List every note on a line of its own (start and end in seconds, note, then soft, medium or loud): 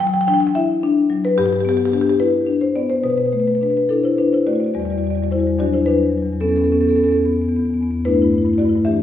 0.00 1.32 E3 loud
0.00 0.43 F#3 medium
0.00 0.07 G5 loud
0.07 0.14 G5 loud
0.14 0.21 G5 loud
0.21 0.28 G5 loud
0.27 0.71 D4 medium
0.27 0.34 G5 loud
0.34 0.40 G5 loud
0.40 0.47 G5 loud
0.47 0.50 G5 loud
0.55 0.82 E4 medium
0.55 1.20 E5 loud
0.83 1.26 D4 medium
1.10 1.37 F#3 medium
1.25 1.37 B4 medium
1.38 3.01 G2 medium
1.38 1.46 G4 loud
1.46 1.53 G4 loud
1.53 1.61 G4 loud
1.61 1.69 G4 medium
1.65 2.09 B3 medium
1.69 1.77 G4 loud
1.77 1.85 G4 loud
1.85 1.93 G4 loud
1.92 2.37 D4 medium
1.92 2.01 G4 medium
2.01 2.10 G4 loud
2.10 2.17 G4 medium
2.20 2.48 E4 medium
2.20 2.60 B4 medium
2.47 2.92 D4 medium
2.61 2.76 C5 medium
2.75 3.04 B3 medium
2.75 2.90 D5 medium
2.90 3.04 C5 medium
3.04 4.72 B2 medium
3.04 3.10 B4 medium
3.10 3.18 B4 medium
3.18 3.25 B4 medium
3.25 3.32 B4 medium
3.32 3.78 A3 medium
3.32 3.40 B4 medium
3.40 3.48 B4 medium
3.48 3.55 B4 medium
3.55 3.63 B4 medium
3.61 3.89 D4 soft
3.61 3.70 B4 medium
3.70 3.77 B4 medium
3.77 3.86 B4 medium
3.89 4.03 D4 medium
3.89 4.04 E4 soft
3.89 4.04 A4 medium
4.03 4.18 E4 medium
4.03 4.18 C5 medium
4.18 4.32 D4 medium
4.18 4.33 B4 medium
4.33 4.47 E4 medium
4.33 4.47 C5 medium
4.47 4.76 A3 soft
4.47 4.55 F#4 medium
4.47 4.53 D5 medium
4.53 4.64 F#4 soft
4.53 4.60 D5 medium
4.60 4.66 D5 medium
4.64 4.74 F#4 soft
4.64 4.74 D5 medium
4.74 4.86 E2 medium
4.74 4.82 G3 soft
4.74 4.82 F#4 soft
4.74 4.80 D5 medium
4.80 4.90 G3 soft
4.80 4.90 F#4 soft
4.80 4.85 D5 medium
4.85 4.96 E2 medium
4.85 4.92 D5 medium
4.90 4.98 G3 soft
4.90 4.98 F#4 soft
4.90 4.98 D5 medium
4.96 5.08 E2 medium
4.96 5.07 G3 soft
4.96 5.07 F#4 soft
4.96 5.04 D5 medium
5.04 5.18 E2 soft
5.04 5.15 G3 soft
5.04 5.15 F#4 soft
5.04 5.10 D5 medium
5.10 5.17 D5 medium
5.15 5.28 E2 medium
5.15 5.23 G3 soft
5.15 5.23 F#4 soft
5.15 5.24 D5 medium
5.23 5.31 G3 soft
5.23 5.32 F#4 soft
5.23 5.28 D5 medium
5.28 5.38 E2 soft
5.28 5.39 G3 soft
5.28 5.57 E4 medium
5.28 5.40 F#4 soft
5.28 5.57 C5 medium
5.38 5.50 E2 medium
5.38 5.47 G3 soft
5.38 5.47 F#4 soft
5.47 5.55 E2 soft
5.47 5.55 G3 soft
5.47 5.55 F#4 soft
5.59 5.70 E2 medium
5.59 5.68 F#3 soft
5.59 5.66 D4 soft
5.59 5.72 F#4 medium
5.59 5.72 D5 medium
5.66 5.76 F#3 soft
5.66 5.74 D4 soft
5.70 5.81 E2 soft
5.70 5.81 D4 soft
5.70 5.86 E4 medium
5.70 5.86 C5 medium
5.76 5.85 F#3 soft
5.81 5.92 E2 soft
5.81 5.86 D4 soft
5.85 5.93 F#3 soft
5.85 6.37 D4 medium
5.85 6.38 B4 medium
5.92 6.03 E2 soft
5.92 6.01 F#3 soft
6.01 6.11 E2 soft
6.01 6.10 F#3 soft
6.10 6.22 E2 soft
6.10 6.18 F#3 soft
6.18 6.26 F#3 soft
6.22 6.33 E2 soft
6.22 6.33 F#3 soft
6.33 6.38 E2 soft
6.33 6.38 F#3 soft
6.41 6.51 E2 medium
6.41 6.49 B3 soft
6.41 6.49 C#4 medium
6.41 6.48 A4 medium
6.48 6.61 E2 soft
6.48 6.58 B3 soft
6.48 6.58 C#4 soft
6.48 6.56 A4 medium
6.56 6.66 B3 soft
6.56 6.65 C#4 medium
6.56 6.64 A4 medium
6.61 6.71 E2 soft
6.61 6.72 C#4 soft
6.61 6.72 A4 medium
6.66 6.74 B3 soft
6.71 6.82 E2 soft
6.71 6.83 B3 soft
6.71 6.81 C#4 medium
6.71 6.81 A4 medium
6.81 6.92 E2 soft
6.81 6.90 B3 soft
6.81 6.88 C#4 soft
6.81 6.89 A4 medium
6.88 6.99 B3 soft
6.88 6.95 C#4 soft
6.88 6.96 A4 medium
6.92 7.04 E2 soft
6.92 7.03 C#4 soft
6.96 7.09 B3 soft
6.96 7.04 A4 medium
7.03 7.16 E2 soft
7.03 7.10 C#4 soft
7.03 7.12 A4 medium
7.09 7.17 B3 soft
7.09 7.19 C#4 soft
7.09 7.19 A4 medium
7.16 7.26 E2 soft
7.16 7.25 B3 soft
7.25 7.37 E2 soft
7.25 7.33 B3 soft
7.33 7.49 E2 soft
7.33 7.41 B3 soft
7.41 7.49 B3 soft
7.49 7.59 E2 soft
7.49 7.57 B3 soft
7.57 7.71 E2 soft
7.57 7.65 B3 soft
7.65 7.74 B3 soft
7.71 7.81 E2 soft
7.71 7.83 B3 soft
7.81 7.91 E2 soft
7.81 7.91 B3 soft
7.91 8.00 E2 soft
7.91 8.00 B3 soft
8.05 8.15 G2 medium
8.05 8.14 A3 soft
8.05 8.55 D4 medium
8.05 8.14 E4 soft
8.05 8.57 B4 medium
8.14 8.24 G2 soft
8.14 8.24 A3 soft
8.14 8.22 E4 soft
8.22 8.34 G2 soft
8.22 8.34 A3 soft
8.22 8.30 E4 soft
8.30 8.45 G2 soft
8.30 8.42 A3 soft
8.30 8.38 E4 soft
8.38 8.46 E4 soft
8.42 8.56 G2 soft
8.42 8.50 A3 soft
8.42 8.54 E4 soft
8.50 8.57 A3 soft
8.50 8.62 E4 soft
8.56 8.65 G2 soft
8.56 8.66 A3 soft
8.56 8.84 F#4 medium
8.56 8.84 D5 medium
8.62 8.75 G2 soft
8.62 8.69 E4 soft
8.66 8.75 A3 soft
8.66 8.78 E4 soft
8.75 8.83 G2 soft
8.75 8.83 A3 soft
8.75 8.83 E4 soft
8.85 8.94 E3 medium
8.85 8.91 A3 soft
8.85 8.93 D4 soft
8.85 9.03 G4 medium
8.85 9.03 E5 medium
8.91 9.03 E3 soft
8.91 8.99 A3 soft
8.91 9.03 D4 soft
8.99 9.03 A3 soft